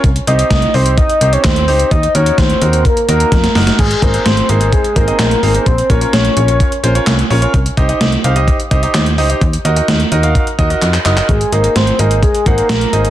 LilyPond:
<<
  \new Staff \with { instrumentName = "Soft synth lead" } { \time 4/4 \key aes \mixolydian \tempo 4 = 128 r8 ees''4 c''8 ees''8. des''16 c''4 | ees''8 des''8 c''4 bes'8 bes'4 r8 | aes'8 bes'8 c''8 bes'8 aes'8 bes'4. | c''8 bes'8 des''2 r4 |
r1 | r1 | aes'8 bes'8 c''8 bes'8 aes'8 bes'4. | }
  \new Staff \with { instrumentName = "Grand piano" } { \time 4/4 \key aes \mixolydian r8 <c' ees' g' c''>8 r8 <c' ees' g' c''>8 r8 <c' ees' g' c''>8 r8 <c' ees' g' c''>8 | r8 <bes ees' ges' bes'>8 r8 <bes ees' ges' bes'>8 r8 <bes ees' ges' bes'>8 r8 <bes ees' ges' bes'>8 | r8 <c' ees' aes' c''>16 <c' ees' aes' c''>8 r16 <c' ees' aes' c''>16 <c' ees' aes' c''>8 r16 <c' ees' aes' c''>16 <c' ees' aes' ees''>8 r16 <c' ees' aes' c''>16 <c' ees' aes' c''>16 | r8 <des' f' bes' des''>16 <des' f' bes' des''>8 r16 <des' f' bes' des''>16 <des' f' bes' des''>8 r16 <des' f' bes' c''>16 <des' f' bes' des''>8 r16 <des' f' bes' des''>16 <des' f' bes' des''>16 |
r8 <ees' g' c'' ees''>16 <ees' g' c'' ees''>8 r16 <ees' g' c'' f''>16 <ees' g' c'' ees''>8 r16 <ees' g' c'' ees''>16 <ees' g' c'' ees''>8 r16 <ees' g' c'' ees''>16 <ees' g' c'' ees''>16 | r8 <ees' ges' bes' ees''>16 <ees' ges' bes' ees''>8 r16 <ees' ges' bes' ees''>16 <ees' ges' bes' f''>8 r16 <ees' ges' bes' ees''>16 <ees' ges' bes' ees''>8 r16 <ees' ges' bes' ees''>16 <ees' ges' bes' ees''>16 | r8 <ees' aes' c'' ees''>8 r8 <ees' aes' c'' ees''>8 r8 <ees' aes' c'' ges''>8 r8 <ees' aes' c'' ees''>8 | }
  \new Staff \with { instrumentName = "FM bass" } { \clef bass \time 4/4 \key aes \mixolydian c,8 c,8 c,8 c,8. r16 c,8 ees,8 des,8 | ees,8 ees,8 ees,8 ees,8. r16 ees,8 f,8 ges,,8 | aes,,8 aes,,8 aes,,8 aes,,8. r16 aes,,8 bes,,8 aes,,8 | bes,,8 bes,,8 bes,,8 bes,,8. r16 bes,,8 c,8 bes,,8 |
c,8 c,8 c,8 c,8. r16 c,8 ees,8 des,8 | ees,8 ees,8 ees,8 ees,8. r16 ees,8 f,8 ges,,8 | aes,,8 aes,,8 aes,,8 aes,,8. r16 aes,,8 bes,,8 aes,,8 | }
  \new DrumStaff \with { instrumentName = "Drums" } \drummode { \time 4/4 <hh bd>16 hh16 hh16 hh16 <hh bd sn>16 hh16 hho16 hh16 <hh bd>16 hh16 hh16 hh16 <hc hh bd sn>16 hh16 hho16 hh16 | <hh bd>16 hh16 hh16 hh16 <hh bd sn>16 hh16 hh16 hh16 <hh bd>16 hh16 hh16 hh16 <hh bd sn>16 <hh sn>16 <hho sn>16 <hh sn>16 | <cymc hh bd>16 hh16 <hh bd>16 hh16 <hh sn>16 hh16 hh16 hh16 <hh bd>16 hh16 <hh bd>16 hh16 <hc hh sn>16 hh16 hho16 hh16 | <hh bd>16 hh16 <hh bd>16 hh16 <hh sn>16 hh16 hh16 hh16 <hh bd>16 hh16 hh16 hh16 <hc hh sn>16 hh16 hho16 hh16 |
<hh bd>16 hh16 <hh bd>16 hh16 <hh sn>16 hh16 hh16 hh16 <hh bd>16 hh16 <hh bd>16 hh16 <hc hh sn>16 hh16 hho16 hh16 | <hh bd>16 hh16 hh16 hh16 <hh sn>16 hh16 hh16 hh16 <hh bd>16 hh16 <hh bd>16 hh16 <hc hh>16 <hc hh>16 <hc hh>16 <hc hh>16 | <hh bd>16 hh16 hh16 hh16 <hh sn>16 hh16 hh16 hh16 <hh bd>16 hh16 <hh bd>16 hh16 <hh sn>16 hh16 hh16 hh16 | }
>>